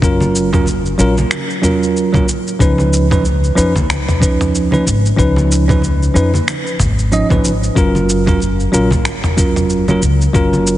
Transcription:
0.02 upright bass F#1, tine electric piano F#3 C#4 F4 A#4, kick, shaker
0.20 high conga, shaker
0.35 shaker
0.53 tine electric piano F#3 C#4 F4 A#4, kick, mid tom, low conga, shaker
0.66 high conga, shaker
0.86 shaker
0.98 upright bass A#1, tine electric piano F#3 C#4 F4 A#4, shaker
1.18 high conga, shaker
1.31 finger snap, shaker
1.50 shaker
1.62 tine electric piano F#3 C#4 F4 A#4, mid tom, high conga, shaker
1.83 shaker
1.97 shaker
2.13 tine electric piano F#3 C#4 F4 A#4, kick, high conga, low conga, shaker
2.28 shaker
2.47 shaker
2.59 upright bass C#2, tine electric piano F3 C#4 D#4 B4, kick, shaker
2.78 high conga, shaker
2.93 shaker
3.10 tine electric piano F3 C#4 D#4 B4, kick, mid tom, low conga, shaker
3.25 high conga, shaker
3.44 shaker
3.55 upright bass F2, tine electric piano F3 C#4 D#4 B4, shaker
3.75 kick, high conga, shaker
3.89 upright bass C#2, finger snap, shaker
4.09 mid tom, shaker
4.20 tine electric piano F3 C#4 D#4 B4, kick, high conga, shaker
4.41 mid tom, shaker
4.55 shaker
4.71 tine electric piano F3 C#4 D#4 B4, high conga, shaker
4.87 upright bass G#1, shaker
5.06 shaker
5.17 upright bass C#2, tine electric piano F3 C#4 D#4 B4, kick, shaker
5.36 high conga, shaker
5.52 shaker
5.68 tine electric piano F3 C#4 D#4 B4, kick, mid tom, low conga, shaker
5.82 high conga, shaker
6.03 shaker
6.14 upright bass F2, tine electric piano F3 C#4 D#4 B4, shaker
6.34 high conga, shaker
6.48 finger snap, shaker
6.67 shaker
6.80 upright bass G#1, kick, mid tom, high conga, shaker
6.99 shaker
7.12 tine electric piano F3 C#4 D#4 D#5, shaker
7.29 upright bass G#1, tine electric piano F3 C#4 D#4 B4, kick, high conga, low conga, shaker
7.44 upright bass G#1, shaker
7.63 shaker
7.75 upright bass F#1, tine electric piano F#3 C#4 F4 A#4, kick, shaker
7.95 high conga, shaker
8.09 shaker
8.26 tine electric piano F#3 C#4 F4 A#4, kick, mid tom, low conga, shaker
8.40 high conga, shaker
8.60 shaker
8.72 upright bass A#1, tine electric piano F#3 C#4 F4 A#4, shaker
8.91 kick, high conga, shaker
9.05 upright bass F#1, finger snap, shaker
9.24 mid tom, shaker
9.37 tine electric piano F#3 C#4 F4 A#4, kick, high conga, shaker
9.56 mid tom, shaker
9.70 shaker
9.88 tine electric piano F#3 C#4 F4 A#4, high conga, shaker
10.02 upright bass C#2, shaker
10.21 shaker
10.33 upright bass F#1, tine electric piano F#3 C#4 F4 A#4, kick, shaker
10.53 high conga, shaker
10.67 shaker

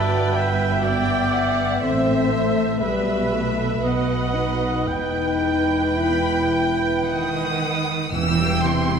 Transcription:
Already playing: double bass section G1, cello section G2, french horn section F#4, viola section B4, violin section D5 G5, clarinet E5, oboe A5
0.36 violin section E5, oboe G5
0.84 french horn section B3, viola section D5, clarinet E5, violin section E5 G5, oboe G5
1.34 violin section F#5
1.81 double bass section A1, cello section A2, french horn section C4, clarinet A4, viola section C5, oboe E5, violin section E5
2.31 french horn section A3
2.81 double bass section B1, cello section B2, french horn section G3, viola section B4, clarinet B4, oboe E5, violin section E5
3.32 french horn section A3
3.81 double bass section B1, cello section B2, french horn section B3, clarinet B4, viola section B4, oboe D#5, violin section D#5 F#5
4.33 french horn section D#4
4.87 double bass section E1, cello section E2, french horn section D#4, viola section B4, clarinet B4, oboe G5, violin section G5
5.96 french horn section E4, clarinet B4, oboe G5, violin section B5
6.52 violin section G5
7.07 cello section D#3, violin section F#5 D#6
8.12 tuba E1, double bass section E1, timpani E2, viola section E3 E4, cello section E3, violin section G5 E6
8.38 viola section G3
8.62 cello section C3, viola section E3, violin section C6
8.88 viola section G3

